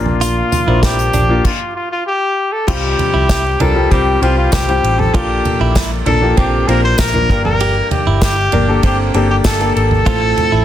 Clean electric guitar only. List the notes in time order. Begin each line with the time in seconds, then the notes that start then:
0.21 F4
0.68 E4
1.14 D4
2.68 F4
3.14 E4
3.60 D4
3.92 C4
4.23 C4
5.15 F4
5.61 E4
6.07 D4
6.37 C4
6.68 C4
7.61 G4
8.07 E4
8.53 D4
8.84 C4
9.14 C4
10.06 F4
10.52 E4